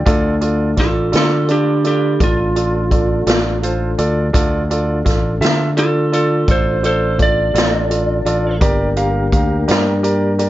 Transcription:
0.05 fingered electric bass D2, tonewheel organ A3 D4 F4 A4, grand piano F4 A4 D5, kick, closed hi-hat
0.41 grand piano F4 A4 D5, closed hi-hat
0.77 fingered electric bass A1, grand piano F4 A4 D5, lead electric guitar F4 A4, kick, snare, closed hi-hat
1.12 fingered electric bass D3, grand piano F4 A4 D5, lead electric guitar F4, snare, closed hi-hat
1.16 lead electric guitar A4
1.48 lead electric guitar D4 G4, grand piano F4 A4 D5, closed hi-hat
1.84 lead electric guitar D4 G4, grand piano F4 A4 D5, closed hi-hat
2.20 fingered electric bass A1, grand piano F4 A4 D5, lead electric guitar F4, kick, closed hi-hat
2.56 grand piano F4 A4 D5, closed hi-hat
2.91 grand piano F4 A4 D5, kick, closed hi-hat
3.27 fingered electric bass A1, grand piano F4 A4 D5, snare, closed hi-hat
3.63 grand piano F4 A4 C5, closed hi-hat
3.98 fingered electric bass D2, grand piano F4 A4 D5, closed hi-hat
4.33 fingered electric bass D2, tonewheel organ A3 D4 F4 A4, grand piano F4 A4 D5, kick, closed hi-hat
4.70 grand piano F4 A4 D5, closed hi-hat
5.05 fingered electric bass A1, grand piano F4 A4 D5, kick, closed hi-hat
5.09 snare
5.41 fingered electric bass D3, grand piano F4 A4 E5, closed hi-hat
5.45 snare
5.77 grand piano F4 A4 D5, lead electric guitar F4 A4, closed hi-hat
6.12 grand piano F4 A4 D5, lead electric guitar F4 A4, closed hi-hat
6.48 fingered electric bass A1, grand piano F4 A4 D5, lead electric guitar A4 C5, kick, closed hi-hat
6.83 grand piano F4 A4 D5, lead electric guitar A4 C5, closed hi-hat
7.18 grand piano F4 A4 D5, kick, closed hi-hat
7.22 lead electric guitar D5
7.54 fingered electric bass A1, grand piano F4 A4 D5, closed hi-hat
7.58 snare
7.90 grand piano F4 A4 D5, closed hi-hat
8.25 fingered electric bass A1, grand piano F4 A4 D5, closed hi-hat
8.61 fingered electric bass G1, tonewheel organ A#3 D4 G4 A#4, grand piano G4 A#4 D5, kick, closed hi-hat
8.96 grand piano G4 A#4 F5, closed hi-hat
9.32 fingered electric bass D2, grand piano G4 A#4 F5, kick, closed hi-hat
9.68 fingered electric bass G2, grand piano G4 A#4 D5, snare, closed hi-hat
10.03 grand piano G4 A#4 D5, closed hi-hat
10.38 grand piano G4 A#4 D5, closed hi-hat

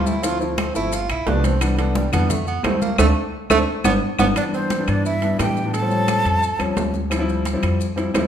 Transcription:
Already playing: upright bass D2, grand piano G3 A3 C4 E4
0.06 tenor saxophone E4, high conga, maracas
0.22 grand piano F3 A3 C4 E4, tenor saxophone F4, high conga, high timbale, maracas
0.40 grand piano F3 A3 C4 E4, tenor saxophone A3, high conga, maracas
0.58 tenor saxophone C4, high conga, high timbale, low timbale, claves, maracas
0.74 upright bass G1, grand piano F3 A3 C4 E4, tenor saxophone E4, high conga, maracas
0.92 tenor saxophone F4, high conga, high timbale, maracas
1.10 upright bass B1, tenor saxophone E4, high conga, high timbale, claves, maracas
1.26 upright bass C2, grand piano F3 A3 B3 D4, tenor saxophone D4, high conga, low timbale, maracas
1.44 tenor saxophone C4, high conga, high timbale, maracas
1.61 grand piano E3 G3 B3 D4, tenor saxophone B3, high timbale, claves, maracas
1.77 tenor saxophone D3, grand piano E3 G3 B3 D4, high conga, high timbale, maracas
1.95 tenor saxophone G3, high conga, low timbale, maracas
2.12 upright bass F2, grand piano E3 G3 B3 D4, tenor saxophone B3, high conga, low conga, high timbale, claves, maracas
2.30 tenor saxophone A3, high conga, low conga, high timbale, maracas
2.47 tenor saxophone B3, high conga, maracas
2.63 upright bass D2, grand piano G3 A3 C4 E4, tenor saxophone C4, high conga, high timbale, low timbale, claves, maracas
2.81 tenor saxophone A#3, high conga, maracas
2.98 upright bass D2, tenor saxophone A3, grand piano A3 C4 D4, high conga, high timbale, claves, maracas
3.50 upright bass D2, tenor saxophone A3, grand piano A3 C4 D4, high conga, high timbale, claves, maracas
3.84 upright bass G1, grand piano G3 B3 D4, tenor saxophone B3, high conga, high timbale, claves, maracas
4.19 upright bass G1, grand piano G3 B3 D4, tenor saxophone B3, high conga, high timbale, claves, maracas
4.35 grand piano E3 G3 B3 D4, tenor saxophone D4, flute D5, high timbale, claves, maracas
4.44 grand piano E3 G3 B3 D4
4.53 tenor saxophone C4, flute C5, high conga, maracas
4.70 high conga, high timbale, low timbale, maracas
4.78 grand piano E3 G3 B3 D4
4.88 upright bass G2, tenor saxophone D4, flute D5, high conga, high timbale, claves, maracas
5.05 tenor saxophone E4, flute E5, high conga, maracas
5.21 grand piano E3 G3 B3 D4, high conga, high timbale, maracas
5.38 upright bass A2, grand piano E3 G3 B3 D4, tenor saxophone G4, flute G5, high conga, high timbale, low timbale, claves, maracas
5.57 high conga, maracas
5.65 grand piano E3 G3 B3 D4
5.74 tenor saxophone A4, flute A5, high conga, high timbale, maracas
5.81 grand piano F3 G3 C4 C#4
5.91 grand piano F3 G3 C4 C#4, high conga, maracas
6.08 high conga, high timbale, low timbale, claves, maracas
6.25 upright bass F2, high conga, high timbale, maracas
6.43 high conga, maracas
6.59 upright bass D#2, grand piano F3 G3 C4 C#4, high conga, high timbale, claves, maracas
6.77 upright bass D2, high conga, high timbale, low timbale, maracas
6.94 high conga, maracas
7.10 grand piano F3 G3 C4 E4, high conga, high timbale, claves, maracas
7.19 grand piano F3 G3 C4 E4
7.28 high conga, maracas
7.45 high conga, high timbale, low timbale, maracas
7.53 grand piano F3 G3 C4 E4
7.63 upright bass F2, high conga, high timbale, claves, maracas
7.80 high conga, maracas
7.96 grand piano F3 G3 C4 E4, high conga, high timbale, maracas
8.14 upright bass D#2, grand piano F3 G3 C4 E4, high conga, high timbale, low timbale, claves, maracas

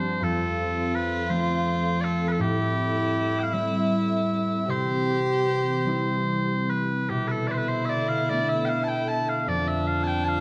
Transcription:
Already playing: harp G2 F3 G3 C4, analog synth pad F3 C4 G4, fiddle D4, bagpipes C5
0.20 harp F2, fiddle F4, analog synth pad A4, bagpipes A4
0.95 bagpipes B4
1.29 harp F3 A3 C4, bagpipes C5
2.01 bagpipes A4 D5
2.28 bagpipes A4 B4
2.39 harp A2, analog synth pad G3 C4, fiddle E4, bagpipes G4
3.39 bagpipes G5
3.43 bagpipes F5
3.53 harp G3 A3 C4, bagpipes E5
4.67 harp C3, analog synth pad E3 G4, fiddle G4, bagpipes C5
5.84 harp G3 C4 E4
6.70 bagpipes B4
7.09 harp B2, analog synth pad D3 B3 A4, fiddle E4, bagpipes G4
7.28 bagpipes A4 B4
7.47 bagpipes D5
7.51 bagpipes B4 C5
7.58 bagpipes B4
7.68 bagpipes C5
7.85 bagpipes E5
7.89 bagpipes D5
8.08 bagpipes F5
8.29 harp A3 B3 D4, bagpipes D5
8.49 bagpipes E5
8.65 bagpipes F5 G5
8.84 bagpipes A5
8.88 bagpipes G5
9.08 bagpipes A5
9.29 bagpipes F5
9.46 harp F2, analog synth pad F2 C4 F4, fiddle D4, bagpipes D5
9.68 bagpipes E5
9.87 bagpipes F5
10.03 bagpipes G5 A5
10.24 bagpipes A5
10.28 bagpipes F5

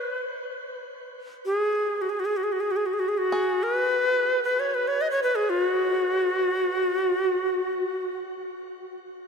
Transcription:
Already playing: native american-style wooden flute B4, five-string banjo B4
1.46 native american-style wooden flute G#4
2.01 native american-style wooden flute F#4
2.09 native american-style wooden flute G#4
2.20 native american-style wooden flute F#4
2.25 native american-style wooden flute G#4
2.37 native american-style wooden flute F#4
2.43 native american-style wooden flute G#4
2.52 native american-style wooden flute F#4
2.60 native american-style wooden flute G#4
2.71 native american-style wooden flute F#4
2.76 native american-style wooden flute G#4
2.86 native american-style wooden flute F#4
2.93 native american-style wooden flute G#4
2.99 native american-style wooden flute F#4
3.08 native american-style wooden flute G#4
3.18 native american-style wooden flute F#4
3.32 five-string banjo G#4
3.63 native american-style wooden flute B4
4.44 native american-style wooden flute B4
4.60 native american-style wooden flute C#5
4.74 native american-style wooden flute B4
4.88 native american-style wooden flute C#5
5.01 native american-style wooden flute D#5
5.11 native american-style wooden flute C#5
5.23 native american-style wooden flute B4
5.35 native american-style wooden flute G#4
5.50 native american-style wooden flute F4
5.64 native american-style wooden flute F#4

